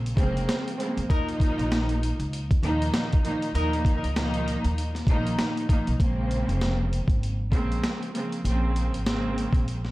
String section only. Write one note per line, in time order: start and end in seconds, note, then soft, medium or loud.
0.16 0.74 C#3 loud
0.16 0.74 F3 medium
0.16 0.75 G#3 medium
0.16 0.75 A#3 loud
0.16 0.75 C4 loud
0.77 1.07 C#3 medium
0.77 1.07 F3 medium
0.77 1.07 G#3 medium
0.77 1.07 A#3 medium
0.77 1.08 C4 medium
1.09 2.37 A#2 loud
1.09 2.37 D#3 medium
1.09 2.38 F3 medium
1.09 2.38 A#3 medium
1.09 2.38 D#4 loud
2.63 3.20 A#2 medium
2.63 3.20 D#3 loud
2.63 3.21 F3 medium
2.63 3.21 A#3 medium
2.63 3.21 D#4 loud
3.24 3.52 A#2 medium
3.24 3.52 D#3 medium
3.24 3.53 F3 medium
3.24 3.53 A#3 medium
3.24 3.53 D#4 loud
3.53 4.11 A#2 loud
3.53 4.11 D#3 medium
3.53 4.12 F3 medium
3.53 4.12 A#3 medium
3.53 4.12 D#4 loud
4.14 4.87 A#2 loud
4.14 4.87 D#3 medium
4.14 4.87 F3 medium
4.14 4.88 A#3 medium
4.14 4.88 D#4 loud
5.09 5.65 A#2 loud
5.09 5.66 D#3 loud
5.09 5.66 F3 medium
5.09 5.66 A#3 medium
5.09 5.66 D#4 loud
5.68 5.97 A#2 medium
5.68 5.97 D#3 medium
5.68 5.98 F3 medium
5.68 5.98 A#3 medium
5.68 5.98 D#4 medium
5.98 7.26 C#3 loud
5.98 7.27 F3 loud
5.98 7.27 G#3 medium
5.98 7.27 A#3 medium
5.98 7.27 C4 loud
7.53 8.10 C#3 loud
7.53 8.10 F3 medium
7.53 8.10 G#3 medium
7.53 8.10 A#3 medium
7.53 8.11 C4 loud
8.13 8.42 C#3 medium
8.13 8.42 F3 medium
8.13 8.42 G#3 medium
8.13 8.43 A#3 medium
8.13 8.43 C4 medium
8.44 9.01 C#3 loud
8.44 9.02 F3 medium
8.44 9.02 G#3 medium
8.44 9.02 A#3 medium
8.44 9.02 C4 loud
9.05 9.77 C#3 loud
9.05 9.77 F3 medium
9.05 9.78 G#3 medium
9.05 9.78 A#3 medium
9.05 9.78 C4 loud